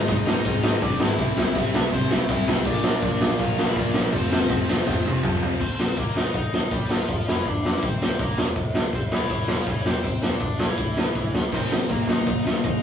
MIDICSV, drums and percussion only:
0, 0, Header, 1, 2, 480
1, 0, Start_track
1, 0, Tempo, 369231
1, 1555, Time_signature, 4, 2, 24, 8
1, 16672, End_track
2, 0, Start_track
2, 0, Title_t, "Drums"
2, 102, Note_on_c, 9, 49, 68
2, 109, Note_on_c, 9, 36, 120
2, 232, Note_off_c, 9, 49, 0
2, 239, Note_off_c, 9, 36, 0
2, 349, Note_on_c, 9, 38, 117
2, 479, Note_off_c, 9, 38, 0
2, 579, Note_on_c, 9, 49, 62
2, 589, Note_on_c, 9, 36, 127
2, 709, Note_off_c, 9, 49, 0
2, 719, Note_off_c, 9, 36, 0
2, 821, Note_on_c, 9, 38, 116
2, 951, Note_off_c, 9, 38, 0
2, 1067, Note_on_c, 9, 36, 125
2, 1067, Note_on_c, 9, 49, 65
2, 1197, Note_off_c, 9, 36, 0
2, 1197, Note_off_c, 9, 49, 0
2, 1300, Note_on_c, 9, 38, 124
2, 1430, Note_off_c, 9, 38, 0
2, 1537, Note_on_c, 9, 49, 62
2, 1542, Note_on_c, 9, 36, 118
2, 1667, Note_off_c, 9, 49, 0
2, 1672, Note_off_c, 9, 36, 0
2, 1782, Note_on_c, 9, 38, 121
2, 1912, Note_off_c, 9, 38, 0
2, 2016, Note_on_c, 9, 49, 68
2, 2021, Note_on_c, 9, 36, 118
2, 2146, Note_off_c, 9, 49, 0
2, 2151, Note_off_c, 9, 36, 0
2, 2261, Note_on_c, 9, 38, 117
2, 2391, Note_off_c, 9, 38, 0
2, 2497, Note_on_c, 9, 49, 67
2, 2499, Note_on_c, 9, 36, 114
2, 2627, Note_off_c, 9, 49, 0
2, 2629, Note_off_c, 9, 36, 0
2, 2739, Note_on_c, 9, 38, 109
2, 2869, Note_off_c, 9, 38, 0
2, 2971, Note_on_c, 9, 49, 75
2, 2976, Note_on_c, 9, 36, 127
2, 3101, Note_off_c, 9, 49, 0
2, 3106, Note_off_c, 9, 36, 0
2, 3218, Note_on_c, 9, 38, 116
2, 3348, Note_off_c, 9, 38, 0
2, 3450, Note_on_c, 9, 36, 116
2, 3450, Note_on_c, 9, 49, 77
2, 3580, Note_off_c, 9, 36, 0
2, 3580, Note_off_c, 9, 49, 0
2, 3682, Note_on_c, 9, 38, 120
2, 3812, Note_off_c, 9, 38, 0
2, 3931, Note_on_c, 9, 49, 66
2, 3932, Note_on_c, 9, 36, 119
2, 4061, Note_off_c, 9, 49, 0
2, 4062, Note_off_c, 9, 36, 0
2, 4174, Note_on_c, 9, 38, 126
2, 4304, Note_off_c, 9, 38, 0
2, 4405, Note_on_c, 9, 49, 62
2, 4412, Note_on_c, 9, 36, 123
2, 4535, Note_off_c, 9, 49, 0
2, 4542, Note_off_c, 9, 36, 0
2, 4660, Note_on_c, 9, 38, 97
2, 4790, Note_off_c, 9, 38, 0
2, 4892, Note_on_c, 9, 36, 121
2, 4896, Note_on_c, 9, 49, 61
2, 5022, Note_off_c, 9, 36, 0
2, 5026, Note_off_c, 9, 49, 0
2, 5123, Note_on_c, 9, 38, 127
2, 5253, Note_off_c, 9, 38, 0
2, 5367, Note_on_c, 9, 49, 63
2, 5368, Note_on_c, 9, 36, 111
2, 5497, Note_off_c, 9, 49, 0
2, 5498, Note_off_c, 9, 36, 0
2, 5613, Note_on_c, 9, 38, 117
2, 5743, Note_off_c, 9, 38, 0
2, 5841, Note_on_c, 9, 49, 65
2, 5846, Note_on_c, 9, 36, 120
2, 5971, Note_off_c, 9, 49, 0
2, 5976, Note_off_c, 9, 36, 0
2, 6100, Note_on_c, 9, 38, 104
2, 6230, Note_off_c, 9, 38, 0
2, 6328, Note_on_c, 9, 36, 111
2, 6331, Note_on_c, 9, 38, 66
2, 6458, Note_off_c, 9, 36, 0
2, 6461, Note_off_c, 9, 38, 0
2, 6568, Note_on_c, 9, 48, 66
2, 6698, Note_off_c, 9, 48, 0
2, 6806, Note_on_c, 9, 36, 127
2, 6816, Note_on_c, 9, 45, 99
2, 6936, Note_off_c, 9, 36, 0
2, 6946, Note_off_c, 9, 45, 0
2, 7051, Note_on_c, 9, 43, 102
2, 7181, Note_off_c, 9, 43, 0
2, 7283, Note_on_c, 9, 36, 98
2, 7289, Note_on_c, 9, 57, 110
2, 7413, Note_off_c, 9, 36, 0
2, 7419, Note_off_c, 9, 57, 0
2, 7529, Note_on_c, 9, 38, 111
2, 7659, Note_off_c, 9, 38, 0
2, 7763, Note_on_c, 9, 51, 71
2, 7765, Note_on_c, 9, 36, 110
2, 7893, Note_off_c, 9, 51, 0
2, 7895, Note_off_c, 9, 36, 0
2, 8012, Note_on_c, 9, 38, 96
2, 8142, Note_off_c, 9, 38, 0
2, 8239, Note_on_c, 9, 51, 64
2, 8245, Note_on_c, 9, 36, 110
2, 8369, Note_off_c, 9, 51, 0
2, 8375, Note_off_c, 9, 36, 0
2, 8495, Note_on_c, 9, 38, 97
2, 8625, Note_off_c, 9, 38, 0
2, 8726, Note_on_c, 9, 51, 73
2, 8728, Note_on_c, 9, 36, 125
2, 8856, Note_off_c, 9, 51, 0
2, 8858, Note_off_c, 9, 36, 0
2, 8971, Note_on_c, 9, 38, 107
2, 9101, Note_off_c, 9, 38, 0
2, 9212, Note_on_c, 9, 36, 113
2, 9219, Note_on_c, 9, 51, 71
2, 9342, Note_off_c, 9, 36, 0
2, 9349, Note_off_c, 9, 51, 0
2, 9466, Note_on_c, 9, 38, 108
2, 9596, Note_off_c, 9, 38, 0
2, 9693, Note_on_c, 9, 36, 96
2, 9696, Note_on_c, 9, 51, 63
2, 9823, Note_off_c, 9, 36, 0
2, 9826, Note_off_c, 9, 51, 0
2, 9946, Note_on_c, 9, 38, 99
2, 10076, Note_off_c, 9, 38, 0
2, 10176, Note_on_c, 9, 36, 122
2, 10184, Note_on_c, 9, 51, 76
2, 10306, Note_off_c, 9, 36, 0
2, 10314, Note_off_c, 9, 51, 0
2, 10423, Note_on_c, 9, 38, 105
2, 10553, Note_off_c, 9, 38, 0
2, 10653, Note_on_c, 9, 36, 122
2, 10657, Note_on_c, 9, 51, 73
2, 10783, Note_off_c, 9, 36, 0
2, 10787, Note_off_c, 9, 51, 0
2, 10892, Note_on_c, 9, 38, 118
2, 11022, Note_off_c, 9, 38, 0
2, 11126, Note_on_c, 9, 51, 80
2, 11129, Note_on_c, 9, 36, 103
2, 11256, Note_off_c, 9, 51, 0
2, 11259, Note_off_c, 9, 36, 0
2, 11372, Note_on_c, 9, 38, 106
2, 11502, Note_off_c, 9, 38, 0
2, 11607, Note_on_c, 9, 51, 75
2, 11610, Note_on_c, 9, 36, 108
2, 11737, Note_off_c, 9, 51, 0
2, 11740, Note_off_c, 9, 36, 0
2, 11849, Note_on_c, 9, 38, 102
2, 11979, Note_off_c, 9, 38, 0
2, 12083, Note_on_c, 9, 51, 78
2, 12087, Note_on_c, 9, 36, 104
2, 12213, Note_off_c, 9, 51, 0
2, 12217, Note_off_c, 9, 36, 0
2, 12317, Note_on_c, 9, 38, 98
2, 12447, Note_off_c, 9, 38, 0
2, 12566, Note_on_c, 9, 51, 78
2, 12570, Note_on_c, 9, 36, 110
2, 12696, Note_off_c, 9, 51, 0
2, 12700, Note_off_c, 9, 36, 0
2, 12812, Note_on_c, 9, 38, 120
2, 12942, Note_off_c, 9, 38, 0
2, 13039, Note_on_c, 9, 51, 61
2, 13051, Note_on_c, 9, 36, 109
2, 13169, Note_off_c, 9, 51, 0
2, 13181, Note_off_c, 9, 36, 0
2, 13289, Note_on_c, 9, 38, 103
2, 13419, Note_off_c, 9, 38, 0
2, 13516, Note_on_c, 9, 51, 68
2, 13529, Note_on_c, 9, 36, 107
2, 13646, Note_off_c, 9, 51, 0
2, 13659, Note_off_c, 9, 36, 0
2, 13768, Note_on_c, 9, 38, 115
2, 13898, Note_off_c, 9, 38, 0
2, 14007, Note_on_c, 9, 51, 76
2, 14013, Note_on_c, 9, 36, 107
2, 14137, Note_off_c, 9, 51, 0
2, 14143, Note_off_c, 9, 36, 0
2, 14261, Note_on_c, 9, 38, 107
2, 14391, Note_off_c, 9, 38, 0
2, 14499, Note_on_c, 9, 51, 79
2, 14500, Note_on_c, 9, 36, 108
2, 14629, Note_off_c, 9, 51, 0
2, 14630, Note_off_c, 9, 36, 0
2, 14742, Note_on_c, 9, 38, 104
2, 14872, Note_off_c, 9, 38, 0
2, 14983, Note_on_c, 9, 36, 95
2, 14986, Note_on_c, 9, 49, 86
2, 15113, Note_off_c, 9, 36, 0
2, 15116, Note_off_c, 9, 49, 0
2, 15230, Note_on_c, 9, 38, 115
2, 15360, Note_off_c, 9, 38, 0
2, 15462, Note_on_c, 9, 51, 76
2, 15466, Note_on_c, 9, 36, 106
2, 15592, Note_off_c, 9, 51, 0
2, 15596, Note_off_c, 9, 36, 0
2, 15712, Note_on_c, 9, 38, 101
2, 15842, Note_off_c, 9, 38, 0
2, 15952, Note_on_c, 9, 36, 118
2, 15962, Note_on_c, 9, 51, 78
2, 16082, Note_off_c, 9, 36, 0
2, 16092, Note_off_c, 9, 51, 0
2, 16202, Note_on_c, 9, 38, 98
2, 16332, Note_off_c, 9, 38, 0
2, 16432, Note_on_c, 9, 36, 114
2, 16432, Note_on_c, 9, 51, 74
2, 16562, Note_off_c, 9, 36, 0
2, 16562, Note_off_c, 9, 51, 0
2, 16672, End_track
0, 0, End_of_file